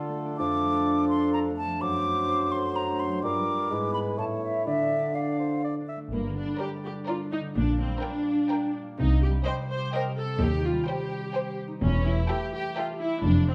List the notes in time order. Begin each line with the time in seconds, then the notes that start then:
Already playing: D3 F4 A4 D5
0.09 A3
0.25 D4
0.38 F2 F3 D4 A4 D6
0.56 A3
0.72 D4
0.86 D5
1.03 A4
1.09 C6
1.18 D5
1.33 D4 A#5
1.50 A3
1.57 A5
1.65 F3
1.81 F#2 F#3 C5 D6
1.98 A3
2.13 D4
2.29 C5
2.44 A4
2.52 C6
2.60 C5
2.76 D4 A#5
2.91 A3
3.00 C6
3.07 F#3
3.22 G2 G3 F4 A#4 D6
3.39 G3
3.55 F4 A#4
3.70 G#2 G#3 E4 B4
3.87 B3
3.94 B5
4.03 E4 B4
4.18 A2 A3 C#5 A5
4.35 A3
4.42 E5
4.50 E4 C#5
4.66 D3 D4 D5 E5
4.83 D4
4.99 D5
5.15 A4 D5 F5
5.32 D5
5.39 C5
5.48 A4
5.64 D5
5.80 D4
5.88 E5
5.97 A3
6.12 G1 G2 A#3
6.29 D3
6.37 D4
6.44 G3
6.59 D4 G4 A#4 D5
6.76 D5
6.85 G4
6.92 D4
7.07 F4 A#4 D5
7.24 D4
7.32 D#4
7.40 D3
7.55 A#1 A#2 D4
7.71 A#3
7.80 C4
7.87 G3
8.02 D4 A#4 G5
8.19 D5
8.35 D4
8.50 A#4 D5 G5
8.66 D4
8.82 A#3
8.97 C2 C3 D#4
9.13 C4
9.22 G4
9.30 G3
9.46 G4 C5 D#5 G5
9.61 C5
9.70 C5
9.78 G4
9.93 A#4 C5 D#5 G5
10.09 G4
10.17 A4
10.25 C4
10.40 D#2 D#3 G4
10.57 D#4
10.65 F4
10.72 G3
10.88 G4 C5 G5
11.04 C5
11.20 G4
11.34 C5 G5
11.51 G4
11.68 D#4
11.82 E1 E2 E3 C#4
11.99 E4
12.06 E4
12.14 A3
12.29 G4 A4 E5 G5
12.46 E5
12.54 G4
12.61 G4
12.77 F4 A4 E5 G5
12.93 G4
13.01 E4
13.08 E4
13.23 F1 F2 F3 D4
13.40 A3
13.48 C4